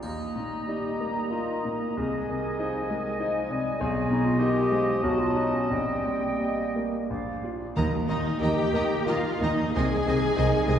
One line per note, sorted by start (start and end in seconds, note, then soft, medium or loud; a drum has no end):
0.02 1.94 D#2 soft
0.02 3.77 D#5 soft
0.02 1.94 A#5 soft
0.02 triangle soft
0.35 0.88 A#2 soft
0.35 0.69 D#4 soft
0.68 1.33 G3 soft
0.68 0.97 D#4 soft
0.68 1.16 G4 medium
0.68 0.98 D#5 soft
1.01 1.52 A#3 soft
1.17 1.32 D#4 medium
1.31 1.97 A#3 soft
1.31 1.62 D#4 soft
1.31 1.65 F4 soft
1.31 1.62 D#5 soft
1.63 1.98 A#2 soft
1.63 1.98 D#4 medium
1.97 3.76 C2 soft
1.97 2.32 G#3 soft
1.97 3.50 G#4 medium
1.97 5.03 G#5 soft
2.28 2.77 C3 soft
2.28 2.61 D#3 soft
2.59 2.91 F3 medium
2.59 2.87 D#4 soft
2.59 2.87 D#5 soft
2.90 3.22 D#3 soft
2.90 3.39 G#3 soft
3.20 3.52 F3 medium
3.20 3.47 D#4 soft
3.20 3.48 D#5 soft
3.50 3.80 C3 soft
3.50 3.82 G3 medium
3.80 4.99 B1 medium
3.80 4.41 G#3 medium
3.80 6.75 D#5 medium
4.10 4.58 B2 medium
4.10 4.27 D#4 medium
4.25 4.40 F4 medium
4.39 4.72 D#3 medium
4.39 4.68 D#4 medium
4.39 5.05 G4 loud
4.39 4.68 D#5 medium
4.71 5.02 F3 medium
4.71 5.03 G#3 soft
5.03 5.68 B1 medium
5.03 5.71 F#3 medium
5.03 5.20 F#4 medium
5.03 5.70 A5 soft
5.19 5.36 F4 medium
5.34 5.55 D#4 medium
5.34 5.67 F#4 soft
5.34 5.67 D#5 soft
5.53 5.70 C#4 medium
5.69 7.05 A#1 soft
5.69 7.43 G3 medium
5.69 6.41 C4 medium
5.69 6.84 G5 soft
6.06 6.61 A#2 soft
6.39 7.43 A#3 soft
6.39 6.71 G4 soft
6.39 6.72 D#5 soft
6.76 7.10 A#3 soft
7.09 7.75 A#1 soft
7.09 7.41 D5 soft
7.09 7.43 F5 soft
7.44 7.73 F4 soft
7.44 7.74 D5 soft
7.76 7.84 D#2 medium
7.76 9.71 D#2 medium
7.76 8.70 D#3 medium
7.76 7.85 D#3 medium
7.76 7.91 D#3 soft
7.76 8.37 A#3 medium
7.76 8.37 D#4 medium
7.76 7.91 A#4 soft
7.76 7.84 D#5 soft
7.76 7.92 D#5 medium
7.76 7.84 A#5 medium
7.76 7.84 A#5 soft
8.08 8.17 D#2 soft
8.08 8.61 A#2 soft
8.08 8.23 D#3 soft
8.08 8.17 D#3 medium
8.08 8.39 D#4 medium
8.08 8.23 A#4 soft
8.08 8.17 D#5 soft
8.08 8.39 D#5 medium
8.08 8.25 D#5 soft
8.08 8.17 A#5 soft
8.40 8.50 D#2 medium
8.40 8.55 D#3 medium
8.40 8.50 D#3 medium
8.40 9.74 A#3 medium
8.40 8.71 D#4 soft
8.40 9.73 D#4 medium
8.40 9.05 G4 medium
8.40 8.55 A#4 medium
8.40 8.71 D#5 soft
8.40 8.57 D#5 soft
8.40 8.51 D#5 soft
8.40 9.07 G5 medium
8.40 8.49 A#5 soft
8.40 8.51 A#5 medium
8.72 8.81 D#2 medium
8.72 8.88 D#3 soft
8.72 8.82 D#3 medium
8.72 9.27 A#3 soft
8.72 8.88 A#4 soft
8.72 8.83 D#5 soft
8.72 8.90 D#5 soft
8.72 8.81 A#5 soft
8.72 8.83 A#5 soft
9.06 9.14 D#2 medium
9.06 9.21 D#3 soft
9.06 9.15 D#3 medium
9.06 9.38 D#4 soft
9.06 9.41 F4 medium
9.06 9.22 A#4 soft
9.06 9.38 D#5 soft
9.06 9.23 D#5 soft
9.06 9.15 D#5 soft
9.06 9.41 F5 medium
9.06 9.15 A#5 soft
9.41 9.49 D#2 medium
9.41 9.75 A#2 soft
9.41 9.56 D#3 medium
9.41 9.49 D#3 medium
9.41 9.75 D#4 medium
9.41 9.56 A#4 soft
9.41 9.75 D#5 medium
9.41 9.57 D#5 soft
9.41 9.51 D#5 soft
9.41 9.48 A#5 soft
9.41 9.51 A#5 soft
9.74 9.83 C2 medium
9.74 10.79 C2 medium
9.74 9.82 C3 medium
9.74 9.89 D#3 medium
9.74 10.79 G#3 medium
9.74 10.79 D#4 medium
9.74 10.79 G#4 medium
9.74 9.89 C5 medium
9.74 9.89 D#5 medium
9.74 9.85 D#5 medium
9.74 9.82 G#5 medium
9.74 10.79 G#5 medium
9.74 9.85 G#5 medium
10.06 10.15 C2 medium
10.06 10.55 C3 medium
10.06 10.15 C3 medium
10.06 10.20 D#3 medium
10.06 10.21 C5 medium
10.06 10.21 D#5 soft
10.06 10.16 D#5 soft
10.06 10.13 G#5 medium
10.06 10.16 G#5 soft
10.36 10.46 C2 medium
10.36 10.45 C3 medium
10.36 10.50 D#3 medium
10.36 10.64 D#4 medium
10.36 10.50 C5 medium
10.36 10.64 D#5 medium
10.36 10.52 D#5 medium
10.36 10.47 D#5 medium
10.36 10.46 G#5 medium
10.36 10.45 G#5 medium
10.67 10.76 C2 medium
10.67 10.76 C3 medium
10.67 10.79 D#3 medium
10.67 10.79 G#3 medium
10.67 10.79 C5 medium
10.67 10.79 D#5 medium
10.67 10.76 D#5 soft
10.67 10.76 G#5 medium
10.67 10.75 G#5 medium